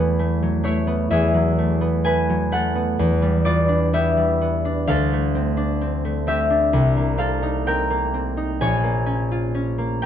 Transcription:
Already playing: E2 F#3 A3 B3 E4 A4 B4 G#5 A5
0.19 A3
0.43 F#3
0.64 A3 E4 C#5
0.87 B3
1.10 E2 G#4 E5
1.34 F#3
1.58 A3
1.81 B3
2.04 A3 B4 G#5
2.30 F#3
2.52 A3 A4 F#5
2.75 B3
2.99 E2
3.22 G3
3.45 B3 F4 D5
3.68 D4
3.93 B3 G4 E5
4.17 G3
4.41 B3
4.65 D4
4.87 D2 A4 F5
5.13 A3
5.35 C4
5.57 D4
5.81 C4
6.05 A3
6.27 C4 G4 E5
6.50 D4
6.73 C2
6.97 A#3
7.18 C4 A4 F5
7.43 D#4
7.67 C4 A#4 G5
7.90 A#3
8.14 C4
8.37 D#4
8.61 A#1 C#5 G#5
8.83 A#3
9.06 C#4
9.31 F4
9.55 C#4
9.78 A#3
10.02 C#4 G5

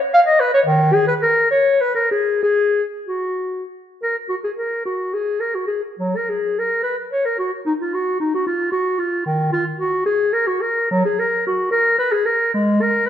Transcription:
0.14 F5
0.26 D#5
0.40 B4
0.54 C#5
0.65 D#3
0.94 G#4
1.08 B4
1.22 A#4
1.51 C#5
1.81 B4
1.95 A#4
2.11 G#4
2.43 G#4
3.07 F#4
4.03 A#4
4.29 F#4
4.44 G#4
4.56 A#4
4.86 F#4
5.14 G#4
5.40 A#4
5.55 F#4
5.67 G#4
5.99 F#3
6.16 A#4
6.29 G#4
6.59 A#4
6.83 B4
7.12 C#5
7.25 A#4
7.39 F#4
7.66 D#4
7.80 F4
7.94 F#4
8.20 D#4
8.34 F#4
8.47 F4
8.72 F#4
8.98 F4
9.26 D#3
9.53 F4
9.79 F#4
10.06 G#4
10.33 A#4
10.47 F#4
10.61 A#4
10.91 F#3
11.05 G#4
11.19 A#4
11.47 F#4
11.71 A#4
11.98 B4
12.12 G#4
12.26 A#4
12.54 G#3
12.81 A#4
13.06 B4

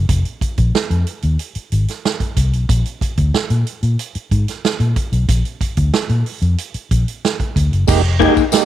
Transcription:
0.09 F1, kick, closed hi-hat
0.25 closed hi-hat
0.41 kick, closed hi-hat
0.58 A#1, kick, closed hi-hat
0.75 snare
0.90 F2, closed hi-hat
1.07 closed hi-hat
1.22 D#2, closed hi-hat
1.39 closed hi-hat
1.55 muted fingered electric bass stroke, closed hi-hat
1.72 G#1, closed hi-hat
1.88 snare, closed hi-hat
2.05 snare
2.20 kick, closed hi-hat
2.37 C2, kick, closed hi-hat
2.53 B1, closed hi-hat
2.69 A#1, kick, closed hi-hat
2.85 closed hi-hat
3.01 kick, closed hi-hat
3.17 D2, kick, closed hi-hat
3.34 snare
3.50 A#2, closed hi-hat
3.67 closed hi-hat
3.83 A#2, closed hi-hat
3.99 closed hi-hat
4.15 muted fingered electric bass stroke, closed hi-hat
4.31 G#2, kick, closed hi-hat
4.48 snare, closed hi-hat
4.65 snare
4.80 A#2, closed hi-hat
4.96 kick, closed hi-hat
5.12 B1, closed hi-hat
5.29 A#1, kick, closed hi-hat
5.45 closed hi-hat
5.61 kick, closed hi-hat
5.77 D2, kick, closed hi-hat
5.94 snare
6.09 A#2, closed hi-hat
6.26 open hi-hat
6.42 F2, closed hi-hat
6.58 closed hi-hat
6.74 muted fingered electric bass stroke, closed hi-hat
6.91 A#1, kick, closed hi-hat
7.08 closed hi-hat
7.25 snare
7.40 kick, closed hi-hat
7.56 D2, kick, closed hi-hat
7.72 F#1, closed hi-hat
7.87 F1 G#3 A#3 D#4 G4, kick, crash, tambourine
8.05 ride
8.20 G#3 A#3 D#4 G4 G#4, kick, ride
8.37 kick, ride, tambourine
8.52 G#3 A#3 D#4 G4, snare, ride, tambourine

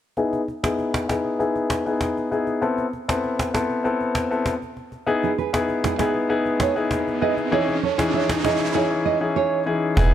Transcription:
0.17 B3 D#4 E4 G#4, cajon slap
0.33 cajon slap
0.48 cajon slap
0.63 B3 D#4 E4 G#4, cajon slap
0.78 cajon slap
0.94 cajon slap
1.09 B3 D#4 E4 G#4, cajon slap
1.24 cajon slap
1.39 B3 D#4 E4 G#4, cajon slap
1.56 cajon slap
1.70 cajon slap
1.86 B3 D#4 E4 G#4, cajon slap
2.01 cajon slap
2.17 cajon slap
2.31 B3 D#4 E4 G#4, cajon slap
2.47 cajon slap
2.62 B3 C4 E4 A4, cajon slap
2.78 cajon slap
2.93 cajon slap
3.08 B3 C4 E4 A4, cajon slap
3.24 cajon slap
3.39 cajon slap
3.54 B3 C4 E4 A4, cajon slap
3.70 cajon slap
3.84 B3 C4 E4 A4, cajon slap
4.01 cajon slap
4.15 cajon slap
4.31 B3 C4 E4 A4, cajon slap
4.46 cajon slap
4.62 cajon slap
4.77 cajon slap
4.92 cajon slap
5.07 B3 D#4 E4 G#4, cajon slap, riser
5.23 E4 G#4, cajon slap
5.38 G#4 B4, cajon slap
5.53 B3 D#4 E4 G#4, cajon slap
5.68 cajon slap
5.84 E4 G#4, cajon slap
5.99 B3 D#4 E4 G#4 B4, cajon slap
6.14 cajon slap
6.29 B3 D#4 E4 G#4, cajon slap
6.45 cajon slap
6.60 A4 C#5, cajon slap
6.76 B3 D#4 E4 G#4, cajon slap
6.91 cajon slap
7.07 cajon slap
7.21 B3 D#4 E4 G#4 B4 D#5, cajon slap
7.37 cajon slap
7.51 E3 C#4 D#4 E4 G#4 C#5, cajon slap
7.68 cajon slap
7.83 A4 C#5, cajon slap
7.98 E3 C#4 D#4 E4 G#4, cajon slap
8.13 C#5 E5, cajon slap
8.29 cajon slap
8.44 E3 C#4 D#4 E4 G#4 B4 D#5, cajon slap
8.60 cajon slap
8.74 E3 C#4 D#4 E4 G#4 C#5
9.06 B4 D#5
9.21 E3 C#4 D#4 E4 G#4
9.36 G#4 C#5
9.66 E3 C#4 D#4 E4 G#4
9.97 E1 B3 D#4 E4 G#4, cajon bass, impact

